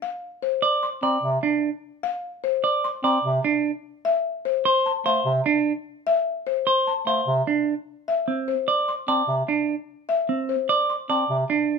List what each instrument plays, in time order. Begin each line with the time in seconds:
0.02 marimba F5
0.43 marimba C5
0.62 clean electric guitar D5
0.83 marimba C6
1.03 bass clarinet C4, clean electric guitar D5, marimba A#5
1.23 bass clarinet C3
1.43 clean electric guitar D4
2.03 marimba F5
2.44 marimba C5
2.64 clean electric guitar D5
2.84 marimba C6
3.04 bass clarinet C4, clean electric guitar D5, marimba A#5
3.24 bass clarinet C3
3.44 clean electric guitar D4
4.05 marimba E5
4.45 marimba C5
4.65 clean electric guitar C5
4.86 marimba A5
5.06 bass clarinet A3, clean electric guitar C5, marimba F5
5.26 bass clarinet C3
5.46 clean electric guitar D4
6.07 marimba E5
6.47 marimba C5
6.67 clean electric guitar C5
6.87 marimba A5
7.07 bass clarinet A3, clean electric guitar C5, marimba F5
7.27 bass clarinet C3
7.47 clean electric guitar D4
8.08 marimba E5
8.28 clean electric guitar C4
8.48 marimba C5
8.68 clean electric guitar D5
8.88 marimba C6
9.08 bass clarinet C4, clean electric guitar D5, marimba A5
9.28 bass clarinet C3
9.48 clean electric guitar D4
10.09 marimba E5
10.29 clean electric guitar C4
10.49 marimba C5
10.69 clean electric guitar D5
10.90 marimba C6
11.10 bass clarinet C4, clean electric guitar D5, marimba A5
11.30 bass clarinet C3
11.50 clean electric guitar D4